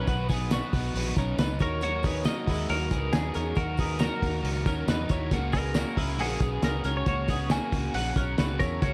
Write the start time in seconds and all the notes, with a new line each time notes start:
Already playing: B4
0.07 B1 B2 D#3 F#3 B3 D#4 F#4 B4, kick, hi-hat pedal, open hi-hat, tambourine
0.29 F#3 B3 D#4 G#4 B4, kick, hi-hat pedal, open hi-hat, tambourine
0.51 F#3 B3 D#4 F#4, snare, hi-hat pedal, open hi-hat, tambourine
0.55 B4
0.73 B1 F#3 B3 D#4 B4, kick, hi-hat pedal, open hi-hat, tambourine
0.94 A#1 B2 D#3 F#3 B3 D#4 B4, hi-hat pedal, open hi-hat, tambourine
1.15 B1 F#3 B3 C#4 D#4 A#4 B4, kick, hi-hat pedal, open hi-hat, tambourine
1.38 C#2 F#3 B3 D#4 B4, snare, hi-hat pedal, open hi-hat, tambourine
1.59 D#2 D#4 F#4 A#4 C#5, kick, hi-hat pedal, open hi-hat, tambourine
1.81 D#3 F#3 A#3 D#4 F#4 A#4 C#5, hi-hat pedal, open hi-hat, tambourine
2.03 B3 D#4 F#4 G#4 A#4, kick, snare, hi-hat pedal, open hi-hat, tambourine
2.24 F#3 A#3 D#4 F#4 D#5, snare, hi-hat pedal, open hi-hat, tambourine
2.29 A#4
2.47 D#2 G#3 D#4 E4 F#4 A#4, kick, hi-hat pedal, open hi-hat
2.69 D#2 D#3 F#3 A#3 D#4 F#4 A#4, hi-hat pedal, open hi-hat, tambourine
2.90 C#2 B3 D#4 F#4 G#4 A#4, kick, hi-hat pedal, open hi-hat, tambourine
3.12 D#2 F#3 D#4 F#4 G#4 A#4, snare, hi-hat pedal, open hi-hat, tambourine
3.34 E2 C#4 D#4 F#4 A#4, hi-hat pedal, open hi-hat, tambourine
3.55 D#2 D#3 F#3 A#3 D#4 F#4 A#4, kick, hi-hat pedal, open hi-hat, tambourine
3.77 B3 D#4 F#4 G#4 A#4, kick, hi-hat pedal, open hi-hat, tambourine
3.99 F#3 A#3 D#4 F#4 A#4, snare, hi-hat pedal, open hi-hat, tambourine
4.20 D#2 D#4 F#4 A#4, kick, hi-hat pedal, open hi-hat
4.42 C#2 D#3 F#3 D#4 F#4 A#4, hi-hat pedal, open hi-hat, tambourine
4.64 D#2 C#4 D#4 F#4 A#4, kick, hi-hat pedal, open hi-hat, tambourine
4.86 E2 F#3 D#4 F#4 A#4 B4, snare, hi-hat pedal, open hi-hat, tambourine
5.08 D#2 D#4 E4 F#4 A#4 C#5, kick, hi-hat pedal, open hi-hat, tambourine
5.31 C#2 C#3 A#3 C#4 F#4 G#4, kick, hi-hat pedal, open hi-hat, tambourine
5.52 B3 C#4 F#4 G#4 A#4, kick, snare, hi-hat pedal, open hi-hat, tambourine
5.74 A#3 C#4 F#4 G#4, snare, hi-hat pedal, open hi-hat, tambourine
5.96 C#2 G#3 C#4 E4 F#4 G#4, kick, hi-hat pedal, open hi-hat
6.18 A#1 C#3 A#3 C#4 F#4 G#4, hi-hat pedal, open hi-hat
6.40 B1 B3 C#4 F#4 G#4, kick, hi-hat pedal, open hi-hat, tambourine
6.62 C#2 A#3 C#4 F#4 G#4 A#4, snare, hi-hat pedal, open hi-hat, tambourine
6.83 C#2 C#4 F#4 G#4 A#4, hi-hat pedal, open hi-hat, tambourine
6.97 C#5
7.06 C#2 C#3 A#3 C#4 F#4 G#4 C#5, kick, hi-hat pedal, open hi-hat, tambourine
7.27 B3 C#4 F#4 G#4, kick, snare, hi-hat pedal, open hi-hat, tambourine
7.49 A#3 C#4 F#4 G#4 G#5, snare, hi-hat pedal, open hi-hat, tambourine
7.71 C#2 C#4 F#4 G#4, kick, hi-hat pedal, open hi-hat, tambourine
7.93 A#1 C#3 A#3 C#4 F#4 G#4 F#5, hi-hat pedal, open hi-hat
8.15 B1 C#4 F#4 G#4 A#4, kick, hi-hat pedal, open hi-hat, tambourine
8.37 C#2 A#3 C#4 F#4 G#4 B4, snare, hi-hat pedal, open hi-hat, tambourine
8.59 E2 C#4 E4 F#4 G#4 A#4 C#5, kick, hi-hat pedal, open hi-hat, tambourine
8.82 C#2 C#3 A#3 C#4 F#4 G#4 C#5, kick, hi-hat pedal, open hi-hat, tambourine